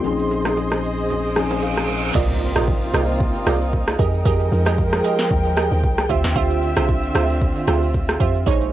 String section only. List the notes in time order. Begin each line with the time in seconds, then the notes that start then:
Already playing: C6
0.04 G#4 C5 D#5
2.15 C3 A#3 C4 D#4 F4
3.99 F3 G#3 A#4 G5
6.10 D3 C4 F4 E5
8.47 G#3 A#3 C#4